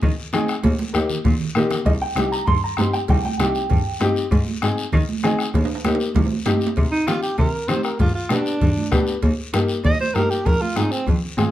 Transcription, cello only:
0.03 0.11 D#3 medium
0.33 0.41 D#3 medium
0.64 0.72 D#2 medium
0.95 1.03 D#2 medium
1.25 1.33 A#2 medium
1.55 1.63 A#2 medium
1.86 1.94 C2 medium
2.16 2.24 C2 medium
2.47 2.55 G2 loud
2.78 2.86 G2 medium
3.09 3.17 C2 loud
3.39 3.47 C2 medium
3.71 3.79 G2 medium
4.00 4.08 G2 medium
4.31 4.39 G#2 loud
4.62 4.70 G#2 medium
4.93 5.01 D#3 loud
5.24 5.32 D#3 medium
5.54 5.62 D#2 medium
5.85 5.93 D#2 medium
6.16 6.24 C2 medium
6.46 6.54 G2 medium
6.77 6.85 C3 medium
7.07 7.15 D#3 medium
7.38 7.46 C3 medium
7.69 7.77 D#3 medium
8.00 8.08 G2 medium
8.30 8.38 B2 medium
8.61 8.69 G2 medium
8.92 9.00 B2 medium
9.23 9.31 D#2 medium
9.53 9.61 G2 medium
9.84 9.92 D#2 medium
10.14 10.22 G2 medium
10.46 10.54 F2 medium
10.76 10.84 G#2 medium
11.07 11.15 F2 medium
11.37 11.45 G#2 medium

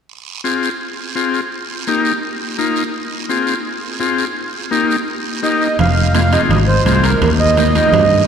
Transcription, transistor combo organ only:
0.44 0.69 C4 medium
0.44 0.69 F4 medium
0.44 0.70 G#4 medium
1.15 1.40 C4 medium
1.15 1.41 F4 medium
1.15 1.41 G#4 medium
1.87 2.12 A#3 medium
1.87 2.13 D#4 medium
1.87 2.13 G4 medium
2.58 2.83 A#3 medium
2.58 2.83 D#4 medium
2.58 2.83 F4 medium
3.29 3.54 C4 medium
3.29 3.55 F4 medium
3.29 3.55 G#4 medium
4.00 4.25 C4 medium
4.00 4.25 F4 medium
4.00 4.25 G#4 medium
4.71 4.96 A#3 medium
4.71 4.97 D#4 medium
4.71 4.97 G4 medium
5.43 5.68 A#3 medium
5.43 5.68 D#4 medium
5.43 5.68 G4 medium
6.14 6.21 C4 medium
6.14 6.21 F4 medium
6.14 6.21 G#4 medium
6.32 6.51 C4 medium
6.32 6.51 F4 medium
6.32 6.51 G#4 medium
6.86 7.10 C4 medium
6.86 7.11 F4 medium
6.86 7.11 G#4 medium
7.57 7.63 A#3 medium
7.57 7.63 D#4 medium
7.57 7.63 G4 medium
7.75 7.93 A#3 medium
7.75 7.94 D#4 medium
7.75 7.94 G4 medium

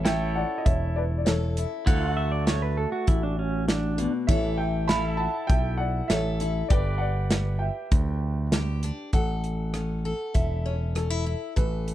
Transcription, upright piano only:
0.05 0.34 E5 medium
0.05 0.36 G5 medium
0.36 0.58 D5 medium
0.36 0.60 F#5 medium
0.58 0.65 D#5 medium
0.65 0.95 C#5 medium
0.65 0.94 E5 medium
0.96 1.03 B4 medium
0.96 1.01 D5 medium
1.18 1.26 D5 medium
1.25 1.69 A4 medium
1.25 1.68 C#5 medium
4.27 4.57 C#5 medium
4.27 4.56 E5 medium
4.58 4.87 E5 medium
4.58 4.89 G5 medium
4.88 5.18 E5 medium
4.88 5.19 B5 loud
5.17 5.48 F#5 medium
5.17 5.49 A5 medium
5.47 5.78 E5 medium
5.47 5.76 G5 loud
5.78 6.08 D5 medium
5.78 6.10 F#5 medium
6.08 6.53 C#5 medium
6.08 6.51 E5 medium
6.69 6.99 B4 medium
6.69 7.00 D5 medium
6.98 7.58 D5 medium
6.98 7.62 F#5 medium
7.59 8.49 E5 medium
7.59 8.47 G5 medium
9.14 10.39 F#5 medium
10.34 10.66 E5 medium
10.66 10.72 C#5 medium
10.96 11.38 A4 medium
11.56 11.94 B4 medium

